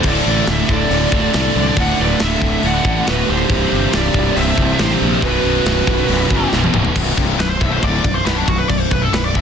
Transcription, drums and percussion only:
0.03 kick loud
0.03 open hi-hat medium
0.03 crash loud
0.47 snare loud
0.47 open hi-hat medium
0.69 kick medium
0.91 open hi-hat medium
1.12 kick loud
1.33 snare loud
1.33 open hi-hat medium
1.76 kick loud
1.76 open hi-hat medium
2.19 snare loud
2.19 open hi-hat medium
2.42 kick medium
2.63 open hi-hat medium
2.85 kick loud
3.07 snare loud
3.07 open hi-hat medium
3.49 kick loud
3.49 open hi-hat medium
3.93 snare loud
3.93 open hi-hat medium
4.14 kick loud
4.37 open hi-hat medium
4.58 kick loud
4.79 snare loud
4.79 open hi-hat medium
4.91 snare soft
5.22 kick loud
5.22 open hi-hat medium
5.66 snare loud
5.66 open hi-hat medium
5.87 kick medium
6.08 open hi-hat medium
6.30 kick loud
6.53 snare medium
6.64 high tom medium
6.74 mid tom loud
6.85 floor tom medium
6.96 kick medium
6.96 crash loud
6.96 crash medium
7.17 kick medium
7.17 crash medium
7.39 snare loud
7.39 crash medium
7.61 kick loud
7.61 crash medium
7.83 kick loud
7.83 crash medium
8.04 kick loud
8.04 crash medium
8.26 snare loud
8.26 crash medium
8.48 kick medium
8.48 crash medium
8.69 kick medium
8.69 crash medium
8.91 kick medium
8.91 crash medium
9.13 snare loud
9.13 crash medium
9.35 kick loud
9.35 crash medium

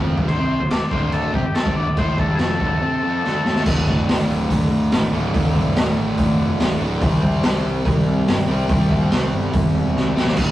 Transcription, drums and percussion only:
0.18 kick loud
0.28 kick medium
0.28 crash medium
0.71 snare loud
0.71 crash medium
0.91 kick loud
1.12 crash medium
1.34 kick loud
1.55 snare loud
1.55 crash medium
1.66 kick loud
1.97 kick loud
1.97 crash medium
2.18 kick loud
2.39 snare loud
2.39 crash medium
2.60 kick loud
3.24 snare medium
3.45 snare medium
3.56 snare medium
3.66 kick loud
3.66 crash loud
3.87 kick medium
4.09 snare loud
4.09 open hi-hat medium
4.50 kick loud
4.50 open hi-hat medium
4.92 snare loud
4.92 open hi-hat medium
5.34 kick loud
5.34 open hi-hat medium
5.55 kick medium
5.76 snare loud
5.76 open hi-hat medium
6.18 kick loud
6.18 open hi-hat medium
6.60 snare loud
6.60 open hi-hat medium
7.01 kick loud
7.01 open hi-hat medium
7.22 kick medium
7.43 snare loud
7.43 open hi-hat medium
7.85 kick loud
7.85 open hi-hat medium
8.28 snare loud
8.28 open hi-hat medium
8.69 kick loud
8.69 open hi-hat medium
8.90 kick medium
9.11 snare loud
9.11 open hi-hat medium
9.53 kick loud
9.53 open hi-hat medium
9.96 snare medium
10.16 snare medium
10.27 snare loud
10.37 kick loud
10.37 open hi-hat medium
10.37 crash loud

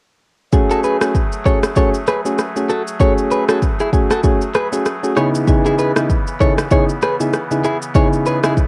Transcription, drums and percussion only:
0.53 kick loud
0.53 shaker medium
0.71 shaker soft
0.84 shaker medium
1.01 cross-stick loud
1.01 shaker medium
1.15 kick medium
1.15 shaker medium
1.32 shaker soft
1.46 kick medium
1.46 shaker soft
1.63 cross-stick loud
1.63 shaker medium
1.76 kick loud
1.76 shaker medium
1.94 shaker medium
2.07 cross-stick loud
2.07 shaker medium
2.26 shaker medium
2.38 cross-stick medium
2.38 shaker medium
2.56 shaker medium
2.69 shaker soft
2.87 shaker medium
3.00 kick loud
3.00 shaker medium
3.18 shaker medium
3.31 shaker medium
3.49 cross-stick loud
3.49 shaker medium
3.62 kick medium
3.62 shaker medium
3.80 shaker soft
3.93 kick medium
3.93 shaker soft
4.11 cross-stick loud
4.11 shaker medium
4.24 kick loud
4.24 shaker medium
4.42 shaker medium
4.55 cross-stick medium
4.55 shaker medium
4.73 shaker medium
4.86 cross-stick medium
4.86 shaker medium
5.04 shaker medium
5.17 cross-stick medium
5.17 shaker soft
5.35 shaker medium
5.48 kick loud
5.48 shaker medium
5.66 shaker soft
5.79 shaker soft
5.96 cross-stick loud
5.96 shaker medium
6.10 kick medium
6.10 shaker medium
6.27 shaker soft
6.40 kick medium
6.40 shaker soft
6.58 cross-stick loud
6.58 shaker medium
6.71 kick loud
6.71 shaker medium
6.89 shaker medium
7.02 cross-stick loud
7.02 shaker medium
7.20 shaker medium
7.33 cross-stick medium
7.33 shaker medium
7.51 shaker medium
7.64 shaker soft
7.82 shaker medium
7.95 kick loud
7.95 shaker medium
8.13 shaker soft
8.26 shaker medium
8.44 cross-stick loud
8.44 shaker medium
8.57 kick medium
8.57 shaker medium

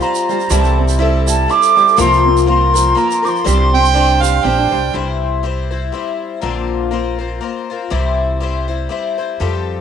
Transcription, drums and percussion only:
0.01 shaker soft
0.15 shaker medium
0.29 shaker soft
0.40 shaker soft
0.50 shaker medium
0.64 shaker soft
0.89 shaker medium
1.28 shaker loud
1.50 shaker soft
1.63 shaker medium
1.77 shaker soft
1.88 shaker soft
1.98 shaker medium
2.12 shaker soft
2.37 shaker medium
2.76 shaker loud
2.97 shaker soft
3.11 shaker medium
3.26 shaker soft
3.36 shaker soft
3.47 shaker medium
3.85 shaker medium
4.24 shaker medium

